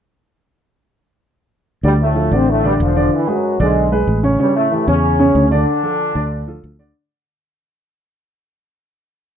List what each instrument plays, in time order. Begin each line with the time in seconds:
1.83 fingered electric bass D2, trombone section G2 G3, upright piano D3 D4 D5
2.02 trombone section A2 A3
2.15 upright piano F3 F4 A4
2.31 fingered electric bass A1, trombone section C3 C4, upright piano D3 D4 D5
2.49 trombone section A2 A3
2.64 trombone section G2 G3, upright piano D3 D4 D5
2.80 fingered electric bass E1, trombone section F3 F4
2.96 upright piano D3 D4 D5
3.14 trombone section E3 E4
3.27 trombone section F#2 F#3, upright piano G#3 G#4 B4
3.59 fingered electric bass B1, trombone section G#2 G#3, upright piano D3 D4 D5
3.91 upright piano G#3 G#4 B4
4.07 fingered electric bass A1
4.23 upright piano C#3 C#4 C#5
4.39 trombone section G2 G3, upright piano C#3 C#4 C#5
4.56 trombone section A2 A3
4.71 upright piano E3 E4 G4
4.87 fingered electric bass E2, upright piano C#3 C#4 C#5, trombone section C#3 C#4
5.19 upright piano C#3 C#4 C#5
5.35 fingered electric bass D2
5.51 upright piano D3 D4 D5, trombone section D3 D4
5.83 upright piano F3 F4 A4
6.15 fingered electric bass D2, upright piano D3 D4 D5
6.48 upright piano F3 F4 A4
6.64 fingered electric bass D2
6.79 upright piano D3 D4 D5